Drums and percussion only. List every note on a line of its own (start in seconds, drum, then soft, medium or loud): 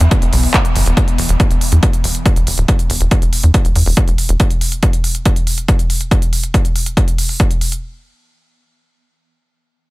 0.01 closed hi-hat soft
0.11 kick loud
0.11 closed hi-hat medium
0.22 closed hi-hat soft
0.33 open hi-hat loud
0.43 open hi-hat medium
0.54 kick loud
0.54 clap loud
0.54 closed hi-hat medium
0.65 closed hi-hat medium
0.76 open hi-hat loud
0.86 closed hi-hat medium
0.97 kick loud
0.97 closed hi-hat medium
1.08 closed hi-hat soft
1.18 open hi-hat loud
1.29 closed hi-hat medium
1.40 kick loud
1.40 closed hi-hat medium
1.51 closed hi-hat soft
1.61 open hi-hat loud
1.72 closed hi-hat medium
1.83 kick loud
1.83 closed hi-hat medium
1.93 closed hi-hat soft
2.04 open hi-hat loud
2.15 closed hi-hat soft
2.26 kick loud
2.26 closed hi-hat medium
2.36 closed hi-hat soft
2.47 open hi-hat loud
2.58 closed hi-hat soft
2.68 kick loud
2.68 closed hi-hat medium
2.79 closed hi-hat soft
2.90 open hi-hat loud
3.01 closed hi-hat medium
3.11 kick loud
3.11 closed hi-hat medium
3.22 closed hi-hat soft
3.33 open hi-hat loud
3.44 closed hi-hat soft
3.54 kick loud
3.54 closed hi-hat medium
3.65 closed hi-hat soft
3.76 open hi-hat loud
3.86 open hi-hat medium
3.97 kick loud
3.97 closed hi-hat medium
4.08 closed hi-hat soft
4.18 open hi-hat loud
4.29 closed hi-hat medium
4.40 kick loud
4.40 closed hi-hat medium
4.51 closed hi-hat soft
4.61 open hi-hat medium
4.72 closed hi-hat medium
4.83 kick loud
4.83 closed hi-hat medium
4.93 closed hi-hat soft
5.04 open hi-hat loud
5.15 closed hi-hat soft
5.25 kick loud
5.25 closed hi-hat medium
5.36 closed hi-hat soft
5.47 open hi-hat medium
5.58 closed hi-hat soft
5.68 kick loud
5.68 closed hi-hat medium
5.79 closed hi-hat soft
5.90 open hi-hat medium
6.01 closed hi-hat soft
6.11 kick loud
6.11 closed hi-hat medium
6.22 closed hi-hat medium
6.33 open hi-hat loud
6.44 closed hi-hat medium
6.54 kick loud
6.54 closed hi-hat medium
6.65 closed hi-hat soft
6.76 open hi-hat loud
6.86 closed hi-hat medium
6.97 kick loud
6.97 closed hi-hat medium
7.08 closed hi-hat soft
7.18 open hi-hat loud
7.29 open hi-hat medium
7.40 kick loud
7.40 closed hi-hat medium
7.51 closed hi-hat soft
7.61 open hi-hat medium
7.72 closed hi-hat medium